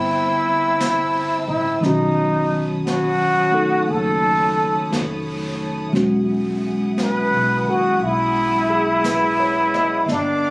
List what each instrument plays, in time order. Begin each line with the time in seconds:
Already playing: upright bass G1, tine electric piano D3 G3 C4, muted trumpet E4, string section C5 G5 A5 E6
0.80 brush sweep, snare, hi-hat pedal
1.48 upright bass A1, muted trumpet E4
1.81 upright bass B1, tine electric piano D#3 F#3 C#4, muted trumpet D#4, brush sweep, snare
1.85 tine electric piano F#4, string section C#5 A5 B5 D#6
2.86 muted trumpet F#4, brush sweep, snare, hi-hat pedal
3.52 tine electric piano A3 D#4 A4
3.88 upright bass F#1, muted trumpet A4, brush sweep
4.90 upright bass F1, brush sweep, snare, hi-hat pedal
5.93 upright bass E1, tine electric piano F#3 G#3 C#4 F#4, string section E4 G#4 F#5 D#6, brush sweep, snare
6.98 muted trumpet B4, brush sweep, snare, hi-hat pedal
7.31 upright bass B1
7.65 upright bass D#2
7.69 muted trumpet F#4
7.99 upright bass B1, brush sweep
8.04 muted trumpet E4
8.70 tine electric piano G#4
9.04 tine electric piano B4, brush sweep, snare, hi-hat pedal
9.40 tine electric piano C#5
9.74 tine electric piano D#5, snare
10.06 upright bass G1, string section A#4 F5 G5 D6, brush sweep, snare
10.11 muted trumpet D4